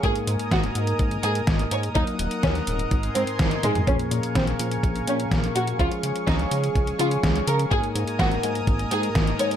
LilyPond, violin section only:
\new Staff \with { instrumentName = "Violin section" } { \time 4/4 \key aes \mixolydian \tempo 4 = 125 aes'8 r8 ges'8 r4 aes'8 r8 des''8 | ees'8 r8 des'8 r4 c'8 r8 aes8 | des'8 r8 c'8 r4 des'8 r8 ges'8 | f'8 r8 ees'8 r4 f'8 r8 bes'8 |
aes'8 r8 ges'8 r4 aes'8 r8 des''8 | }